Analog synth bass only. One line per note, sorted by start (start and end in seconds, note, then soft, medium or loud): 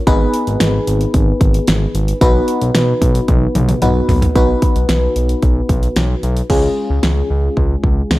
0.07 0.26 G#1 loud
0.47 0.57 G#1 medium
0.61 0.79 G#1 loud
0.87 1.06 G#1 loud
1.14 1.33 G#1 loud
1.41 1.60 G#1 loud
1.68 1.86 G#1 loud
1.94 2.13 G#1 loud
2.21 2.40 B1 loud
2.61 2.71 B1 loud
2.75 2.94 B1 loud
3.02 3.20 B1 loud
3.28 3.47 B1 loud
3.55 3.74 B1 loud
3.82 4.01 B1 loud
4.09 4.28 B1 loud
4.36 4.54 B1 loud
4.76 4.85 B1 loud
4.89 5.08 B1 loud
5.16 5.35 B1 medium
5.43 5.61 B1 loud
5.69 5.88 B1 loud
5.96 6.15 B1 loud
6.23 6.42 B1 loud
6.50 6.69 C#2 loud
6.90 6.99 C#2 loud
7.03 7.22 C#2 loud
7.30 7.49 C#2 loud
7.57 7.76 C#2 loud
7.84 8.02 C#2 loud
8.11 8.19 C#2 loud